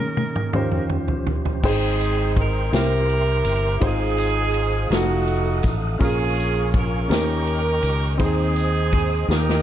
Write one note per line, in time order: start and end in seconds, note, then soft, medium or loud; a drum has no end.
0.00 0.50 D#3 medium
0.00 0.53 D#3 soft
0.00 0.53 A#3 soft
0.00 0.42 C#4 medium
0.00 1.61 C#4 soft
0.00 0.43 D#4 medium
0.00 0.43 G#4 medium
0.00 0.51 G#4 medium
0.00 0.43 A#4 medium
0.00 0.88 A#4 medium
0.17 high tom medium
0.36 mid tom medium
0.53 1.63 D#2 soft
0.53 1.59 D#3 medium
0.53 1.63 F3 soft
0.53 1.52 C#4 medium
0.53 1.52 F4 medium
0.53 1.63 G4 medium
0.53 1.52 G4 medium
0.53 1.63 C5 soft
0.53 1.53 C5 medium
0.53 mid tom medium
0.72 mid tom medium
0.90 mid tom medium
1.08 floor tom medium
1.27 floor tom medium
1.45 floor tom medium
1.63 2.69 G#1 medium
1.63 2.69 G#2 medium
1.63 2.70 C4 medium
1.63 2.61 D#4 medium
1.63 2.70 D#4 medium
1.63 2.72 G#4 medium
1.63 2.62 G#4 medium
1.63 2.34 G#4 loud
1.63 2.62 C5 medium
1.63 2.72 D#5 medium
1.63 3.80 G5 medium
1.63 2.62 G5 medium
1.63 3.80 C6 medium
1.63 kick loud
1.63 crash medium
1.63 tambourine soft
2.01 ride soft
2.01 tambourine medium
2.37 2.74 A#4 loud
2.37 kick medium
2.37 ride medium
2.71 3.42 C2 medium
2.71 3.79 C3 medium
2.71 3.71 E4 medium
2.71 3.79 E4 medium
2.71 3.71 G4 medium
2.71 3.79 G4 medium
2.71 3.80 A#4 medium
2.71 3.72 A#4 medium
2.71 3.72 C5 medium
2.71 3.80 E5 medium
2.71 snare loud
2.71 ride medium
2.71 tambourine medium
2.75 3.80 A#4 loud
3.09 ride soft
3.45 3.79 G1 medium
3.45 ride medium
3.45 tambourine soft
3.80 4.87 G#1 loud
3.80 4.87 G#2 medium
3.80 4.79 D#4 medium
3.80 4.80 F4 medium
3.80 3.88 G4 medium
3.80 4.90 C5 medium
3.80 4.80 C5 medium
3.80 7.07 F5 medium
3.80 4.90 G#5 medium
3.80 5.98 D#6 medium
3.80 kick loud
3.80 ride medium
3.80 tambourine soft
3.85 4.89 C4 medium
3.85 4.89 D#4 medium
3.85 4.94 G#4 loud
3.85 4.83 G#4 medium
4.18 ride soft
4.18 tambourine medium
4.54 ride medium
4.90 5.60 F1 loud
4.90 5.89 F3 medium
4.90 5.89 D#4 medium
4.90 5.89 F#4 medium
4.90 5.99 A4 medium
4.90 5.90 A4 medium
4.90 5.99 F#5 medium
4.90 snare loud
4.90 ride medium
4.90 tambourine loud
4.94 5.98 A3 medium
4.94 5.98 D#4 medium
4.94 5.72 F#4 medium
5.28 ride soft
5.63 5.98 A1 medium
5.63 kick medium
5.63 ride medium
5.63 tambourine soft
5.99 7.06 A#1 loud
5.99 7.06 A#2 medium
5.99 6.98 C#4 medium
5.99 6.98 F4 medium
5.99 7.07 F4 medium
5.99 6.99 G#4 medium
5.99 6.99 A#4 medium
5.99 8.18 A#4 medium
5.99 7.09 G#5 medium
5.99 8.18 C#6 medium
5.99 kick loud
5.99 ride medium
5.99 tambourine soft
6.03 7.08 C#4 medium
6.03 6.71 G#4 medium
6.37 ride soft
6.37 tambourine medium
6.74 7.12 A#4 medium
6.74 kick medium
6.74 ride medium
7.08 7.79 D#2 medium
7.08 8.15 D#3 medium
7.08 8.07 C#4 medium
7.08 8.08 D#4 medium
7.08 8.08 G4 medium
7.08 8.08 A#4 medium
7.08 9.62 D#5 medium
7.08 8.19 G5 medium
7.08 ride medium
7.12 8.17 C#4 medium
7.12 8.17 G4 medium
7.12 8.18 A#4 loud
7.12 snare loud
7.12 tambourine loud
7.47 ride soft
7.83 8.20 C#2 medium
7.83 ride medium
7.83 tambourine soft
8.18 9.25 D#2 loud
8.18 9.25 D#3 medium
8.18 9.17 C4 medium
8.18 9.17 D#4 medium
8.18 9.18 G#4 medium
8.18 9.18 C5 medium
8.18 9.29 C5 medium
8.18 9.29 G#5 medium
8.18 9.62 D#6 medium
8.18 kick medium
8.18 ride medium
8.18 tambourine soft
8.23 9.27 C4 medium
8.23 9.27 D#4 medium
8.23 9.31 G#4 loud
8.56 ride soft
8.56 tambourine medium
8.93 kick medium
8.93 ride medium
9.28 9.62 D#2 loud
9.28 9.62 D#3 medium
9.28 9.62 A#3 medium
9.28 9.62 D#4 medium
9.28 9.62 G4 medium
9.28 9.62 A#4 medium
9.28 9.62 G5 medium
9.28 snare medium
9.28 tambourine loud
9.33 9.62 A#4 medium
9.50 snare medium